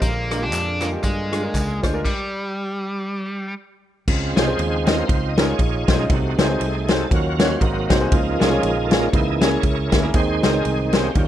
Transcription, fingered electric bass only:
0.02 A#1
0.53 F2
1.04 G2
1.54 C#2
1.84 D2
4.08 C#2
4.37 C2
4.58 D#2
5.09 C#2
5.59 A#1
5.88 B1
6.10 C2
6.39 C#2
6.60 C2
7.11 D#2
7.61 G#1
7.90 C2
8.12 C#2
8.41 C2
8.63 A#1
9.13 C#2
9.64 C#2
9.92 D2
10.14 D#2
10.44 C#2
10.65 C2
11.16 D#2

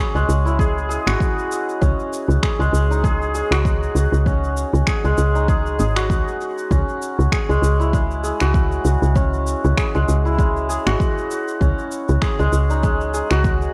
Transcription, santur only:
Already playing: G#3 C#4 E4 F#4 G#4
0.15 G#3
0.45 E4
0.59 G#4
0.89 G#4
1.07 F#4
1.81 C#4
2.42 G#4
2.60 G#3
2.90 D#4
3.04 G#4
3.35 G#4
3.52 F#4
4.26 C#4
4.88 G#4
5.05 G#3
5.35 D#4
5.48 G#4
5.79 G#4
5.96 F#4
6.71 C#4
7.32 G#4
7.50 G#3
7.80 E4
7.94 G#3
8.24 G#4
8.41 F#4
9.16 C#4
9.77 G#4
9.94 G#3
10.25 E4
10.39 G#3
10.69 G#4
10.86 F#4
11.61 C#4
12.22 G#4
12.39 G#3
12.70 D#4
12.83 G#3
13.14 G#4
13.31 F#4

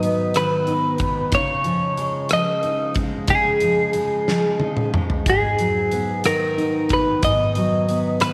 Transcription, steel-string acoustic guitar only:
Already playing: G#2 D#3 F#3 D#4
0.03 B3
0.35 D#3
0.68 D#4
1.00 B3
1.32 C#3 D#4
1.64 F3
1.97 G#3
2.30 F3
2.63 D#4
2.97 G#3
3.29 C#3 D#4
3.62 F3
3.95 G#3
4.28 F3
4.61 D#4
4.95 G#3
5.27 G#2 D#4
5.59 F#3
5.92 B3
6.25 D#3
6.58 D#4
6.90 B3
7.23 G#2 D#4
7.56 F#3
7.89 B3
8.21 D#3

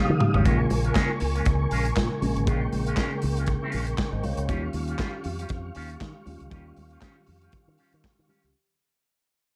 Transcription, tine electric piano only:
Already playing: C#3 F3 G3 A#3 D#4
0.45 C#3 G#3 A#3 F4
2.21 C#3 G#3 A#3 C#4
2.46 C#3 G#3 A#3 G#4
4.13 C5 D#5
4.24 C#5 F5
4.37 A#4 C#5
4.48 D#3 G3 C#4 F4
6.26 D#3 G3 C#4 F4
6.50 D#3 G3 C#4 F4
8.28 D#3 G3 C#4 G4

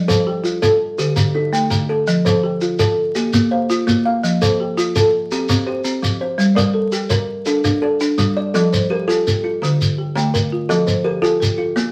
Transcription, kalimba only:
Already playing: D5
0.08 F3 A4
0.62 A4
0.99 G4
1.16 D3
1.35 D#4
1.70 D3
1.89 A4
2.26 F3 A4
2.79 A4
3.16 G4
3.33 A#3
3.51 C5
3.87 A#3
4.05 F5
4.42 F3 A4
4.96 A4
5.32 G4
5.49 C4
5.67 G4
6.02 F3
6.21 C5
6.56 G3 A#4
7.10 A#4
7.46 A4
7.64 D4
7.82 A4
8.18 G3
8.37 D5
8.54 F3 A4
8.90 G4
9.08 A4
9.44 F4
9.62 D3
10.15 D3
10.34 A#4
10.69 F3 A4
11.04 G4
11.22 A4
11.58 F4
11.76 A#3

